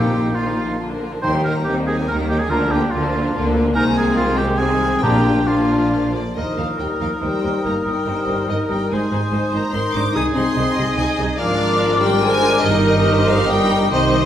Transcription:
Already playing: double bass section A#1, timpani A#2, cello section A#2, french horn section A#3, clarinet D#4, oboe G4, flute section F5, violin section G5
0.01 viola section D#3 F3, violin section D#4
0.12 viola section D#3 A#3, violin section F4
0.23 viola section D#3 F3, violin section D#4
0.34 viola section D#3 A#3, clarinet D#4, violin section F4 F5, oboe F4, flute section F5
0.45 viola section D#3 F3, violin section D#4
0.56 viola section D#3 A#3, violin section F4
0.67 viola section D#3 F3, violin section D#4
0.78 viola section D3 A#3, clarinet D4, violin section F4, flute section F5
0.90 viola section F3 D4, violin section D4 A#4
1.00 viola section D3 A#3, violin section F4
1.11 viola section F3 D4, violin section D4 A#4
1.22 double bass section D#2, cello section D#3, timpani D#3, viola section A#3, clarinet D#4, violin section D#4 C6, oboe C5, flute section G5
1.33 viola section G3, violin section A#3 G4
1.43 viola section A#3, violin section D#4 A#5, oboe A#4
1.55 viola section G3, violin section A#3 G4
1.64 double bass section D#2, cello section D#3, viola section A#3, french horn section C4, violin section D#4, oboe G4
1.70 violin section G5
1.76 viola section G3, violin section A#3 G4
1.87 viola section A#3, violin section D#4 G#5, oboe G#4
1.98 viola section G3, violin section A#3 G4
2.08 double bass section D#2, cello section D#3, viola section A#3, french horn section A#3, violin section D#4 A#5, oboe A#4
2.19 viola section G3, violin section A#3 G4
2.29 viola section A#3, violin section D#4 G5, oboe G4
2.40 viola section G3, violin section A#3 G4 G#5, oboe G#4
2.50 double bass section D2, cello section D3, viola section D3 A#3, violin section D4 F4 A#5, clarinet F4, oboe A#4, flute section A#5
2.61 viola section F3 D4, violin section A#3 D4
2.71 viola section D3 A#3, violin section D4 F4 G5, oboe G4
2.82 viola section F3 D4, violin section A#3 D4
2.91 double bass section D2, cello section D3, viola section D3 A#3, violin section D4 F4 F5, french horn section D4, oboe F4
3.03 viola section F3 D4, violin section A#3 D4
3.13 viola section D3 A#3, violin section D4 F4
3.23 viola section F3 D4, violin section A#3 D4
3.34 double bass section D2, cello section D3, viola section D3 A#3, french horn section A#3, violin section D4 F4
3.45 viola section F3 D4, violin section A#3 D4
3.55 viola section D3 A#3, violin section D4 F4
3.65 viola section F3 D4, violin section A#3 D4
3.74 double bass section C2, cello section C3, viola section D#3 G#3, violin section C4 A#5, clarinet D#4, oboe A#4, flute section G#5
3.96 oboe G#4, violin section G#5
4.16 french horn section G#3, oboe F4, violin section F5
4.36 oboe G4, violin section G5
4.58 viola section D#3 G#3, french horn section C4, violin section C4 G#5, oboe G#4
5.02 double bass section A#1, timpani A#2, cello section A#2, viola section F3 A#3, clarinet D4, violin section D4 F4 G5, french horn section D4, oboe G4, flute section A#5
5.47 viola section F3 A#3, violin section D4 F4 F5, oboe F4
6.15 french horn section D3, violin section D5
6.36 double bass section D#2, cello section D#2, french horn section D#3, clarinet D#4, viola section D#4 A#4, oboe A#4, violin section C5 D#5, flute section D#6
6.56 cello section D#2, double bass section D#2, french horn section F3, viola section D#4 A#4, violin section F5
6.78 cello section D#2, double bass section D#2, french horn section G3, viola section D#4 A#4, violin section A#4 G5
7.00 double bass section D#2, cello section D#2, french horn section F3, viola section D#4 A#4, violin section F5
7.20 double bass section D#2, cello section D#2, french horn section G3, viola section D#4 A#4, violin section C5 G5
7.42 double bass section D#2, cello section D#2, viola section D#4 A#4
7.64 double bass section G1, cello section G2, french horn section A#3, viola section D#4 A#4, violin section A#4 A#5
7.85 double bass section G1, cello section G2, french horn section G3, viola section D#4 A#4, violin section G5
8.07 double bass section G1, cello section G2, viola section D#4 A#4, violin section C5
8.27 double bass section G1, cello section G2, viola section D#4 A#4
8.49 double bass section G1, cello section G2, french horn section D#3, viola section D#4 A#4, violin section A#4 D#5
8.69 double bass section G1, cello section G2, french horn section G3, viola section D#4 A#4, violin section G5
8.90 double bass section G#1, cello section G#2, french horn section G#3, clarinet D#4, viola section D#4 C5, violin section G#4 G#5, oboe C5, flute section D#6
9.11 double bass section G#1, cello section G#2, viola section D#4 C5
9.32 double bass section G#1, cello section G#2, viola section D#4 C5, violin section C5
9.52 double bass section G#1, cello section G#2, french horn section A#3, viola section D#4 C5, violin section A#5
9.72 double bass section G#1, cello section G#2, french horn section C4, viola section D#4 C5, violin section A#4 C6
9.94 double bass section G#1, cello section G#2, french horn section D4, viola section D#4 C5, violin section D6
10.13 double bass section C2, cello section C3, french horn section D#4, viola section D#4 G#4, violin section G#4 D#6, oboe G#4
10.34 double bass section C2, cello section C3, french horn section C4, viola section D#4 G#4, violin section C6
10.56 double bass section C2, cello section C3, viola section D#4 G#4, violin section D#5
10.76 double bass section C2, cello section C3, viola section D#4 G#4
10.97 double bass section C2, cello section C3, french horn section G#3, viola section D#4 G#4, violin section G#5
11.18 double bass section C2, cello section C3, viola section D#4 G#4
11.38 double bass section G#1, cello section G#2, french horn section F3, viola section D4 A#4, clarinet F4, oboe A#4, violin section D5 F5, flute section D6
12.00 french horn section G3, violin section G5
12.22 french horn section G#3, viola section D4 A#4, violin section C5 G#5
12.63 double bass section G1, cello section G2, french horn section D#3, viola section D#4 A#4, clarinet G4, violin section A#4 D#5, flute section D#6
13.06 violin section C5
13.28 french horn section F3, violin section F5
13.49 french horn section G3, viola section D#4 A#4, violin section A#4 G5
13.92 double bass section C2, cello section C3, french horn section D#3, viola section D#4 C5, violin section C5 D#5, oboe C5

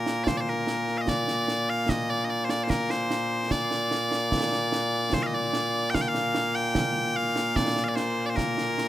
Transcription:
Already playing: bagpipes A#2 A#3 A#4
0.07 snare
0.24 bagpipes C5 D5, concert bass drum, snare
0.37 bagpipes C5 D5
0.47 bagpipes A#4, snare
0.67 snare
0.88 snare
0.98 bagpipes D#5 F5
1.08 bagpipes D5, concert bass drum, snare
1.28 snare
1.48 snare
1.70 bagpipes F5
1.89 bagpipes D#5, concert bass drum, snare
2.10 bagpipes D5
2.25 bagpipes D#5
2.30 bagpipes D5
2.45 bagpipes C5
2.49 bagpipes D5, snare
2.64 bagpipes C5
2.70 bagpipes A#4, concert bass drum, snare
2.90 bagpipes C5, snare
3.11 snare
3.51 bagpipes D5, concert bass drum, snare
3.71 snare
3.91 snare
4.11 snare
4.32 concert bass drum, snare
4.52 snare
4.72 snare
5.13 bagpipes C5, concert bass drum, snare
5.23 bagpipes D#5 F5
5.35 bagpipes D5
5.53 snare
5.90 bagpipes G5
5.94 bagpipes F5, concert bass drum, snare
6.01 bagpipes G5
6.08 bagpipes F5
6.15 snare
6.35 snare
6.55 bagpipes G5
6.75 concert bass drum, snare
7.16 bagpipes F5
7.36 snare
7.56 bagpipes D5, concert bass drum, snare
7.76 snare
7.84 bagpipes F5
7.89 bagpipes D5
7.96 bagpipes C5, snare
8.26 bagpipes C5 D5
8.36 bagpipes A#4, concert bass drum, snare
8.58 snare
8.78 snare

